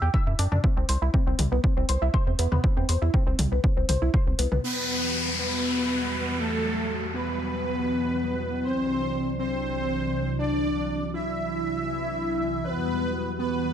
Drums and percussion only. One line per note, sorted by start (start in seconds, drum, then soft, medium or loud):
0.14 kick loud
0.39 open hi-hat loud
0.52 mid tom medium
0.64 kick loud
0.89 open hi-hat loud
1.14 kick loud
1.39 open hi-hat loud
1.39 mid tom medium
1.64 kick loud
1.89 open hi-hat medium
2.14 kick loud
2.39 open hi-hat medium
2.52 mid tom medium
2.64 kick loud
2.89 open hi-hat loud
3.14 kick loud
3.39 open hi-hat loud
3.39 mid tom loud
3.64 kick loud
3.89 open hi-hat loud
3.89 mid tom medium
4.14 kick loud
4.39 open hi-hat loud
4.52 mid tom medium